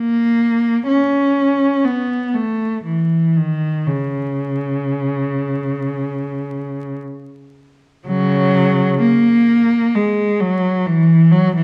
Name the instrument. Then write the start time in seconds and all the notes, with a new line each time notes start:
cello
Already playing: A#3
0.88 C#4
1.85 B3
2.34 A3
2.84 E3
3.36 D#3
3.87 C#3
8.07 C#3 F#3
9.01 A#3
9.95 G#3
10.40 F#3
10.86 E3
11.31 F#3
11.56 E3